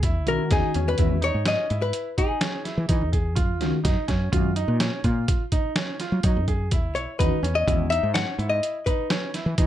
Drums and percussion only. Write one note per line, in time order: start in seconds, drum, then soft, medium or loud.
0.03 kick medium
0.03 closed hi-hat medium
0.27 closed hi-hat soft
0.51 kick loud
0.51 snare soft
0.51 closed hi-hat medium
0.74 closed hi-hat medium
0.98 kick medium
0.98 closed hi-hat medium
1.22 closed hi-hat medium
1.46 snare medium
1.46 closed hi-hat medium
1.70 closed hi-hat medium
1.93 closed hi-hat medium
2.18 kick medium
2.18 closed hi-hat medium
2.41 snare loud
2.41 closed hi-hat medium
2.65 snare soft
2.65 closed hi-hat medium
2.89 kick loud
2.89 closed hi-hat medium
3.13 kick medium
3.13 closed hi-hat medium
3.36 kick loud
3.36 closed hi-hat medium
3.61 snare soft
3.61 closed hi-hat medium
3.85 kick loud
3.85 snare soft
3.85 closed hi-hat medium
4.08 kick medium
4.08 snare soft
4.08 closed hi-hat soft
4.33 kick loud
4.33 closed hi-hat medium
4.56 closed hi-hat medium
4.80 snare loud
4.80 closed hi-hat medium
5.04 kick medium
5.04 closed hi-hat medium
5.28 kick loud
5.28 closed hi-hat medium
5.52 kick medium
5.52 closed hi-hat medium
5.76 snare loud
5.76 closed hi-hat medium
6.00 snare soft
6.00 closed hi-hat medium
6.23 kick loud
6.23 closed hi-hat medium
6.48 kick medium
6.48 closed hi-hat medium
6.71 kick loud
6.71 closed hi-hat medium
6.96 closed hi-hat medium
7.20 kick medium
7.20 closed hi-hat medium
7.44 closed hi-hat medium
7.68 kick loud
7.68 closed hi-hat medium
7.92 closed hi-hat medium
8.15 snare loud
8.15 closed hi-hat medium
8.39 closed hi-hat medium
8.63 closed hi-hat medium
8.87 kick medium
8.87 closed hi-hat medium
9.10 snare loud
9.10 closed hi-hat medium
9.34 snare soft
9.34 closed hi-hat medium
9.58 kick loud
9.58 closed hi-hat medium